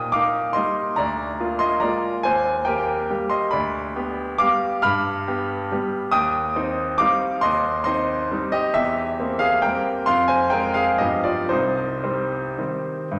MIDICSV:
0, 0, Header, 1, 2, 480
1, 0, Start_track
1, 0, Key_signature, -3, "minor"
1, 0, Tempo, 423729
1, 1118, Time_signature, 3, 2, 24, 8
1, 4484, Tempo, 433839
1, 8804, Tempo, 444774
1, 11684, Tempo, 473186
1, 12164, Tempo, 511509
1, 13124, Tempo, 535714
1, 14165, End_track
2, 0, Start_track
2, 0, Title_t, "Grand piano"
2, 0, Program_c, 0, 0
2, 0, Control_c, 0, 64, 127
2, 0, Note_on_c, 0, 46, 59
2, 0, Note_on_c, 0, 79, 71
2, 0, Note_on_c, 0, 87, 89
2, 115, Note_off_c, 0, 79, 0
2, 138, Note_on_c, 0, 86, 90
2, 140, Note_off_c, 0, 46, 0
2, 141, Note_off_c, 0, 87, 0
2, 151, Note_on_c, 0, 77, 67
2, 165, Note_on_c, 0, 58, 50
2, 171, Note_on_c, 0, 63, 55
2, 590, Note_off_c, 0, 58, 0
2, 593, Note_off_c, 0, 63, 0
2, 595, Note_off_c, 0, 77, 0
2, 601, Note_on_c, 0, 84, 84
2, 615, Note_on_c, 0, 75, 58
2, 622, Note_off_c, 0, 86, 0
2, 630, Note_on_c, 0, 55, 46
2, 632, Note_on_c, 0, 58, 42
2, 636, Note_on_c, 0, 63, 48
2, 642, Control_c, 0, 64, 0
2, 1072, Note_off_c, 0, 55, 0
2, 1073, Note_off_c, 0, 58, 0
2, 1075, Note_off_c, 0, 63, 0
2, 1075, Note_off_c, 0, 75, 0
2, 1090, Note_on_c, 0, 82, 92
2, 1103, Note_off_c, 0, 84, 0
2, 1106, Note_on_c, 0, 74, 71
2, 1115, Note_on_c, 0, 38, 64
2, 1337, Control_c, 0, 64, 127
2, 1568, Note_off_c, 0, 38, 0
2, 1589, Note_on_c, 0, 58, 50
2, 1593, Note_on_c, 0, 65, 56
2, 1770, Note_off_c, 0, 74, 0
2, 1801, Note_on_c, 0, 84, 93
2, 1807, Note_off_c, 0, 82, 0
2, 1814, Note_on_c, 0, 75, 68
2, 2023, Note_off_c, 0, 58, 0
2, 2025, Note_off_c, 0, 65, 0
2, 2040, Note_on_c, 0, 82, 85
2, 2045, Note_off_c, 0, 75, 0
2, 2053, Note_on_c, 0, 74, 65
2, 2056, Note_off_c, 0, 84, 0
2, 2066, Note_on_c, 0, 56, 45
2, 2072, Note_on_c, 0, 58, 48
2, 2077, Control_c, 0, 64, 0
2, 2079, Note_on_c, 0, 65, 50
2, 2504, Note_off_c, 0, 56, 0
2, 2507, Note_off_c, 0, 58, 0
2, 2508, Note_off_c, 0, 74, 0
2, 2510, Note_off_c, 0, 65, 0
2, 2531, Note_on_c, 0, 80, 92
2, 2536, Note_off_c, 0, 82, 0
2, 2548, Note_on_c, 0, 72, 71
2, 2559, Note_on_c, 0, 39, 65
2, 2732, Control_c, 0, 64, 127
2, 2992, Note_off_c, 0, 72, 0
2, 3000, Note_on_c, 0, 79, 82
2, 3013, Note_on_c, 0, 70, 67
2, 3018, Note_off_c, 0, 39, 0
2, 3018, Note_off_c, 0, 80, 0
2, 3028, Note_on_c, 0, 58, 49
2, 3031, Note_on_c, 0, 67, 54
2, 3471, Note_off_c, 0, 58, 0
2, 3472, Note_off_c, 0, 67, 0
2, 3474, Note_off_c, 0, 70, 0
2, 3502, Note_off_c, 0, 79, 0
2, 3517, Note_on_c, 0, 55, 47
2, 3518, Note_on_c, 0, 58, 44
2, 3525, Control_c, 0, 64, 0
2, 3525, Note_on_c, 0, 67, 55
2, 3732, Note_on_c, 0, 84, 83
2, 3746, Note_on_c, 0, 75, 63
2, 3953, Note_off_c, 0, 55, 0
2, 3954, Note_off_c, 0, 58, 0
2, 3957, Note_off_c, 0, 67, 0
2, 3973, Note_on_c, 0, 83, 78
2, 3975, Note_off_c, 0, 75, 0
2, 3985, Note_off_c, 0, 84, 0
2, 3985, Note_on_c, 0, 74, 57
2, 3996, Note_on_c, 0, 38, 67
2, 4198, Control_c, 0, 64, 127
2, 4470, Note_off_c, 0, 38, 0
2, 4486, Note_on_c, 0, 59, 57
2, 4491, Note_on_c, 0, 67, 57
2, 4929, Note_off_c, 0, 74, 0
2, 4935, Note_off_c, 0, 59, 0
2, 4938, Note_off_c, 0, 67, 0
2, 4955, Note_on_c, 0, 86, 96
2, 4966, Note_on_c, 0, 77, 76
2, 4967, Note_off_c, 0, 83, 0
2, 4980, Note_on_c, 0, 55, 49
2, 4984, Note_on_c, 0, 59, 51
2, 4990, Control_c, 0, 64, 0
2, 4990, Note_on_c, 0, 67, 55
2, 5420, Note_off_c, 0, 55, 0
2, 5422, Note_off_c, 0, 59, 0
2, 5423, Note_off_c, 0, 77, 0
2, 5425, Note_off_c, 0, 67, 0
2, 5439, Note_on_c, 0, 89, 103
2, 5448, Note_on_c, 0, 83, 91
2, 5452, Note_off_c, 0, 86, 0
2, 5463, Note_on_c, 0, 43, 76
2, 5713, Control_c, 0, 64, 127
2, 5925, Note_off_c, 0, 43, 0
2, 5944, Note_on_c, 0, 59, 55
2, 5946, Note_on_c, 0, 67, 60
2, 6384, Note_off_c, 0, 59, 0
2, 6385, Note_off_c, 0, 67, 0
2, 6429, Note_on_c, 0, 55, 53
2, 6434, Control_c, 0, 64, 0
2, 6436, Note_on_c, 0, 67, 56
2, 6437, Note_on_c, 0, 59, 48
2, 6841, Note_off_c, 0, 83, 0
2, 6850, Note_off_c, 0, 55, 0
2, 6854, Note_off_c, 0, 59, 0
2, 6854, Note_off_c, 0, 67, 0
2, 6870, Note_on_c, 0, 87, 111
2, 6881, Note_off_c, 0, 89, 0
2, 6881, Note_on_c, 0, 79, 88
2, 6895, Note_on_c, 0, 39, 72
2, 7091, Control_c, 0, 64, 127
2, 7344, Note_off_c, 0, 39, 0
2, 7361, Note_on_c, 0, 60, 57
2, 7365, Note_on_c, 0, 63, 65
2, 7802, Note_off_c, 0, 79, 0
2, 7809, Note_off_c, 0, 60, 0
2, 7811, Note_off_c, 0, 63, 0
2, 7827, Note_on_c, 0, 86, 100
2, 7840, Note_off_c, 0, 87, 0
2, 7841, Note_on_c, 0, 77, 69
2, 7854, Note_on_c, 0, 55, 52
2, 7857, Note_on_c, 0, 60, 56
2, 7860, Control_c, 0, 64, 0
2, 7861, Note_on_c, 0, 63, 59
2, 8292, Note_off_c, 0, 55, 0
2, 8294, Note_off_c, 0, 60, 0
2, 8296, Note_off_c, 0, 63, 0
2, 8296, Note_off_c, 0, 77, 0
2, 8307, Note_on_c, 0, 84, 109
2, 8323, Note_off_c, 0, 86, 0
2, 8323, Note_on_c, 0, 75, 78
2, 8336, Note_on_c, 0, 39, 76
2, 8529, Control_c, 0, 64, 127
2, 8763, Note_off_c, 0, 84, 0
2, 8764, Note_off_c, 0, 75, 0
2, 8779, Note_on_c, 0, 84, 95
2, 8790, Note_off_c, 0, 39, 0
2, 8791, Note_on_c, 0, 75, 72
2, 8805, Note_on_c, 0, 60, 61
2, 8813, Note_on_c, 0, 63, 65
2, 9255, Note_off_c, 0, 60, 0
2, 9256, Note_off_c, 0, 75, 0
2, 9259, Note_off_c, 0, 63, 0
2, 9285, Note_off_c, 0, 84, 0
2, 9292, Note_on_c, 0, 55, 50
2, 9297, Note_on_c, 0, 60, 51
2, 9303, Note_on_c, 0, 63, 51
2, 9310, Control_c, 0, 64, 0
2, 9513, Note_on_c, 0, 75, 89
2, 9525, Note_on_c, 0, 67, 77
2, 9731, Note_off_c, 0, 55, 0
2, 9734, Note_off_c, 0, 60, 0
2, 9737, Note_off_c, 0, 63, 0
2, 9746, Note_off_c, 0, 67, 0
2, 9749, Note_on_c, 0, 76, 102
2, 9762, Note_off_c, 0, 75, 0
2, 9762, Note_on_c, 0, 67, 75
2, 9773, Note_on_c, 0, 40, 74
2, 9962, Control_c, 0, 64, 127
2, 10225, Note_off_c, 0, 40, 0
2, 10240, Note_on_c, 0, 58, 56
2, 10243, Note_on_c, 0, 60, 55
2, 10434, Note_off_c, 0, 67, 0
2, 10452, Note_on_c, 0, 77, 100
2, 10465, Note_on_c, 0, 68, 68
2, 10471, Note_off_c, 0, 76, 0
2, 10684, Note_off_c, 0, 58, 0
2, 10685, Note_off_c, 0, 60, 0
2, 10700, Note_off_c, 0, 68, 0
2, 10700, Note_on_c, 0, 79, 92
2, 10710, Note_on_c, 0, 70, 70
2, 10711, Note_off_c, 0, 77, 0
2, 10724, Note_on_c, 0, 55, 47
2, 10729, Note_on_c, 0, 58, 52
2, 10733, Note_on_c, 0, 60, 53
2, 10742, Control_c, 0, 64, 0
2, 11162, Note_off_c, 0, 55, 0
2, 11164, Note_off_c, 0, 58, 0
2, 11164, Note_off_c, 0, 70, 0
2, 11166, Note_off_c, 0, 60, 0
2, 11176, Note_on_c, 0, 84, 107
2, 11189, Note_on_c, 0, 77, 91
2, 11193, Note_off_c, 0, 79, 0
2, 11201, Note_on_c, 0, 41, 63
2, 11396, Control_c, 0, 64, 127
2, 11410, Note_on_c, 0, 80, 91
2, 11418, Note_off_c, 0, 77, 0
2, 11423, Note_on_c, 0, 72, 69
2, 11428, Note_off_c, 0, 84, 0
2, 11650, Note_on_c, 0, 79, 94
2, 11656, Note_off_c, 0, 72, 0
2, 11666, Note_on_c, 0, 70, 71
2, 11667, Note_off_c, 0, 41, 0
2, 11667, Note_off_c, 0, 80, 0
2, 11678, Note_on_c, 0, 56, 54
2, 11682, Note_on_c, 0, 60, 60
2, 11892, Note_off_c, 0, 70, 0
2, 11896, Note_on_c, 0, 77, 99
2, 11902, Note_off_c, 0, 79, 0
2, 11909, Note_on_c, 0, 68, 72
2, 12121, Note_off_c, 0, 56, 0
2, 12123, Note_off_c, 0, 60, 0
2, 12142, Note_on_c, 0, 75, 84
2, 12143, Note_off_c, 0, 68, 0
2, 12152, Note_on_c, 0, 67, 66
2, 12154, Note_off_c, 0, 77, 0
2, 12164, Note_on_c, 0, 43, 64
2, 12165, Note_on_c, 0, 53, 42
2, 12170, Note_on_c, 0, 55, 43
2, 12175, Note_on_c, 0, 59, 43
2, 12177, Control_c, 0, 64, 0
2, 12372, Control_c, 0, 64, 127
2, 12379, Note_off_c, 0, 67, 0
2, 12382, Note_on_c, 0, 74, 76
2, 12391, Note_off_c, 0, 75, 0
2, 12392, Note_on_c, 0, 65, 62
2, 12604, Note_off_c, 0, 53, 0
2, 12607, Note_off_c, 0, 55, 0
2, 12609, Note_off_c, 0, 59, 0
2, 12619, Note_off_c, 0, 65, 0
2, 12619, Note_on_c, 0, 72, 83
2, 12627, Note_off_c, 0, 43, 0
2, 12630, Note_on_c, 0, 63, 62
2, 12632, Note_off_c, 0, 74, 0
2, 12644, Note_on_c, 0, 36, 63
2, 12650, Control_c, 0, 64, 0
2, 12842, Control_c, 0, 64, 127
2, 13111, Note_off_c, 0, 36, 0
2, 13128, Note_on_c, 0, 55, 50
2, 13131, Note_on_c, 0, 60, 58
2, 13579, Note_off_c, 0, 55, 0
2, 13581, Note_off_c, 0, 60, 0
2, 13618, Note_on_c, 0, 51, 45
2, 13622, Note_on_c, 0, 55, 43
2, 13626, Note_on_c, 0, 60, 45
2, 13631, Control_c, 0, 64, 0
2, 14057, Note_off_c, 0, 51, 0
2, 14059, Note_off_c, 0, 55, 0
2, 14061, Note_off_c, 0, 60, 0
2, 14097, Note_on_c, 0, 43, 59
2, 14165, Note_off_c, 0, 43, 0
2, 14165, Note_off_c, 0, 63, 0
2, 14165, Note_off_c, 0, 72, 0
2, 14165, End_track
0, 0, End_of_file